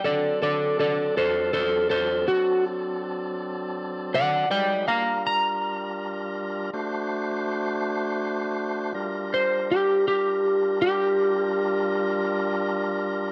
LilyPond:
<<
  \new Staff \with { instrumentName = "Electric slide guitar" } { \time 12/8 \key g \minor \tempo 4. = 54 <a' d''>8 <a' d''>8 <a' d''>8 <a' c''>8 <a' c''>8 <a' c''>8 fis'8 r2 <d'' fis''>8 | <d'' g''>8 <f'' bes''>8 bes''2 r2. | r8 c''8 g'8 g'4 g'2 r4. | }
  \new Staff \with { instrumentName = "Tonewheel organ" } { \time 12/8 \key g \minor <fis c' d' a'>1. | <fis aes ees' b'>8 <g d' f' bes'>2~ <g d' f' bes'>8 <a d' fis' c''>2. | <g d' f' bes'>1. | }
>>